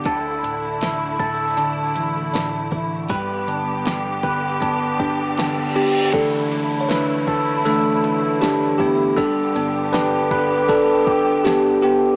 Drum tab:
CC |--------|--------|x-------|--------|
RD |--------|--------|xxxxxxxx|xxxxxxxx|
HH |xxxxxxxx|xxxxxxxx|--------|--------|
SD |--o---o-|--o---o-|--o---o-|--o---o-|
BD |o--o---o|o--ooo--|o--o---o|o--ooo--|